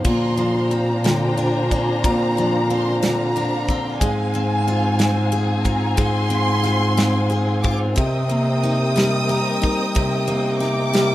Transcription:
Already playing: steel-string acoustic guitar D3 F3 B3 D4
0.04 steel-string acoustic guitar A#2, bass clarinet A#2, string section D4 C5 F5 A#5, violin section C6, kick, crash
0.37 steel-string acoustic guitar F3, ride
0.70 steel-string acoustic guitar C4, violin section A#5, ride
1.04 steel-string acoustic guitar D3, violin section G5, snare, ride
1.37 steel-string acoustic guitar D4, ride
1.71 steel-string acoustic guitar C4, violin section G#5, kick, ride
2.04 bass clarinet A#2, steel-string acoustic guitar A#2, violin section A#5, kick, ride
2.37 steel-string acoustic guitar F3, ride
2.69 steel-string acoustic guitar C4, violin section C6, ride
3.02 steel-string acoustic guitar D3, violin section A#5, snare, ride
3.36 steel-string acoustic guitar D4, ride
3.68 steel-string acoustic guitar C4, kick, ride
4.00 bass clarinet G#2, steel-string acoustic guitar G#3, string section C4 G#4 G#5, violin section G#5, kick, ride
4.34 steel-string acoustic guitar C4, ride
4.67 steel-string acoustic guitar F4, ride
4.99 steel-string acoustic guitar C4, snare, ride
5.32 steel-string acoustic guitar G#4, ride
5.59 violin section A5
5.65 steel-string acoustic guitar F4, violin section A#5, kick, ride
5.97 bass clarinet G#2, steel-string acoustic guitar G#3, violin section C6, kick, ride
6.30 steel-string acoustic guitar C4, ride
6.64 steel-string acoustic guitar F4, snare, ride
6.97 steel-string acoustic guitar C4, snare, ride
7.30 steel-string acoustic guitar G#4, ride
7.63 steel-string acoustic guitar F4, violin section D6, kick, ride
7.96 steel-string acoustic guitar C3, bass clarinet C3, string section A#4 D#5 G5, violin section D#6, kick, ride
8.29 steel-string acoustic guitar A#3, ride
8.63 steel-string acoustic guitar D#4, ride
8.96 steel-string acoustic guitar G3, snare, ride
9.29 steel-string acoustic guitar A#4, ride
9.62 steel-string acoustic guitar D#4, kick, ride
9.95 steel-string acoustic guitar C3, bass clarinet C3, kick, ride
10.28 steel-string acoustic guitar A#3, ride
10.60 steel-string acoustic guitar D#4, violin section D6, snare, ride
10.93 steel-string acoustic guitar G3, snare, ride

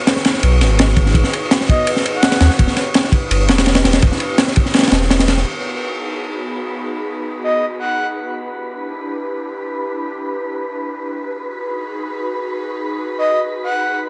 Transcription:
Already playing: analog synth pad B3 D#4 F#4 G#4, synth texture C#5 C#6
0.07 snare, ride
0.16 snare
0.25 snare, ride
0.34 snare
0.43 sub bass B1, ride
0.61 sub bass G#1, snare, ride
0.79 snare, ride
0.88 snare
0.96 sub bass G#1, kick, ride
1.06 snare
1.14 sub bass G#1, kick, ride
1.24 snare
1.33 ride
1.51 snare, ride
1.61 snare
1.69 soft synth lead D#5, kick, ride
1.87 ride
1.96 snare
2.06 ride
2.14 soft synth lead F#5
2.23 snare, ride
2.32 snare, ride
2.40 sub bass D#2, snare, ride
2.50 snare
2.59 sub bass E1, analog synth pad D4 E4 G4, kick, ride
2.67 snare
2.76 snare, ride
2.94 snare, ride
3.04 snare
3.12 kick, ride
3.30 sub bass G1, ride
3.48 sub bass E1, snare, ride
3.58 snare, ride
3.66 snare, ride
3.75 snare, ride
3.84 sub bass E1, snare, ride
3.93 snare, ride
4.02 sub bass E1, kick, ride
4.12 snare
4.20 ride
4.38 snare, ride
4.47 snare
4.56 kick, ride
4.66 snare
4.74 snare, ride
4.78 snare, ride
4.83 snare, ride
4.88 snare, ride
4.92 sub bass E1, snare, ride
5.02 snare
5.10 snare, ride
5.19 snare, ride
5.28 snare, ride
5.37 snare
5.46 analog synth pad B3 D#4 F#4 G#4, synth texture B4 B5
7.44 soft synth lead D#5
7.79 soft synth lead F#5
8.33 analog synth pad D4 E4 G4 B4
11.21 analog synth pad D#4 F#4 G#4
13.18 soft synth lead D#5
13.63 soft synth lead F#5

